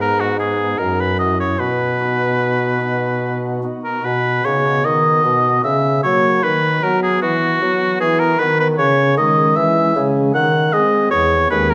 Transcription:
Already playing: pipe organ G#2 B3 D#4, bassoon G#2
0.01 oboe A#4
0.20 oboe F#4
0.40 pipe organ B3 D#4, oboe G#4
0.78 pipe organ F#2, bassoon F#2, oboe A#4
1.00 oboe B4
1.19 pipe organ C#4 E4 F#4, oboe D#5
1.40 oboe C#5
1.59 pipe organ B2, bassoon B2, oboe B4
2.00 pipe organ B3 D#4 F#4
2.80 pipe organ B3 D#4 F#4
3.63 pipe organ B3 D#4 F#4
3.84 oboe A#4
4.04 pipe organ B2, bassoon B2, oboe B4
4.45 pipe organ C#3 B3 D#4 F#4, bassoon C#3, oboe C#5
4.85 pipe organ D#3, bassoon D#3, oboe D#5
5.24 pipe organ B2 B3 D#4 F#4, bassoon B2
5.64 bassoon C#3, pipe organ C#3, oboe E5
6.03 bassoon F#3, pipe organ F#3 A#3 F#4, oboe C#5
6.43 bassoon D#3, pipe organ D#3, oboe B4
6.83 bassoon F#3, pipe organ F#3 B3 F#4, oboe A#4
7.03 oboe G#4
7.22 bassoon E3, pipe organ E3, oboe F#4
7.61 pipe organ F#3 B3 F#4, bassoon F#3
8.00 bassoon E3, pipe organ E3, oboe G#4
8.19 oboe A#4
8.39 bassoon D#3, pipe organ D#3 B3 F#4, oboe B4
8.60 oboe B4
8.78 bassoon C#3, pipe organ C#3, oboe C#5
9.17 bassoon D#3, pipe organ D#3 G#3 C#4 G#4, oboe D#5
9.56 bassoon E3, pipe organ E3, oboe E5
9.96 bassoon C#3, pipe organ C#3 G#3 C#4 G#4
10.34 bassoon D#3, pipe organ D#3, oboe F#5
10.73 bassoon G#3, pipe organ G#3 C4 G#4, oboe D#5
11.11 bassoon E2, pipe organ E2, oboe C#5
11.50 bassoon D#2, pipe organ D#2 G#3 C#4 G#4, oboe B4
11.70 oboe A#4

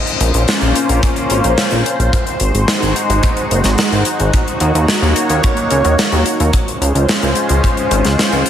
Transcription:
Already playing: analog synth pad A#3 C#4 F4 C5
0.07 closed hi-hat
0.21 analog synth bass A#1, closed hi-hat
0.34 analog synth bass A#1, closed hi-hat
0.48 snare, closed hi-hat
0.61 analog synth bass A#1, closed hi-hat
0.75 closed hi-hat
0.89 analog synth bass A#1, closed hi-hat
1.03 kick, closed hi-hat
1.16 closed hi-hat
1.30 analog synth bass G#1, closed hi-hat
1.44 analog synth bass A#1, closed hi-hat
1.58 snare, closed hi-hat
1.71 analog synth bass A#1, closed hi-hat
1.86 closed hi-hat
2.00 analog synth bass A#1, closed hi-hat
2.13 analog synth pad G#3 D#4 F#4, kick, closed hi-hat
2.27 closed hi-hat
2.40 analog synth bass G#1, closed hi-hat
2.55 analog synth bass G#1, closed hi-hat
2.68 snare, closed hi-hat
2.82 analog synth bass G#1, closed hi-hat
2.96 closed hi-hat
3.10 analog synth bass G#1, closed hi-hat
3.23 kick, closed hi-hat
3.37 closed hi-hat
3.51 analog synth bass F#1, closed hi-hat
3.64 analog synth bass G#1, snare, closed hi-hat
3.78 snare, closed hi-hat
3.92 analog synth bass G#1, closed hi-hat
4.05 closed hi-hat
4.20 analog synth bass G#1, closed hi-hat
4.34 analog synth pad A#3 C#5, kick, closed hi-hat
4.48 closed hi-hat
4.60 analog synth bass D#2, closed hi-hat
4.75 analog synth bass D#2, closed hi-hat
4.88 snare, closed hi-hat
5.02 analog synth bass D#2, closed hi-hat
5.16 closed hi-hat
5.30 analog synth bass D#2, closed hi-hat
5.43 kick, closed hi-hat
5.57 closed hi-hat
5.70 analog synth bass C#2, closed hi-hat
5.85 analog synth bass D#2, closed hi-hat
5.99 snare, closed hi-hat
6.12 analog synth bass D#2, closed hi-hat
6.26 closed hi-hat
6.40 analog synth bass D#2, closed hi-hat
6.53 analog synth pad G#3 C#4 F4 C5, kick, closed hi-hat
6.68 closed hi-hat
6.81 analog synth bass C#2, closed hi-hat
6.95 analog synth bass C#2, closed hi-hat
7.09 snare, closed hi-hat
7.22 analog synth bass C#2, closed hi-hat
7.35 closed hi-hat
7.49 analog synth bass C#2, closed hi-hat
7.64 kick, closed hi-hat
7.77 closed hi-hat
7.91 analog synth bass G#1, closed hi-hat
8.05 analog synth bass C#2, snare, closed hi-hat
8.19 snare, closed hi-hat
8.32 analog synth bass C#2, closed hi-hat
8.46 closed hi-hat

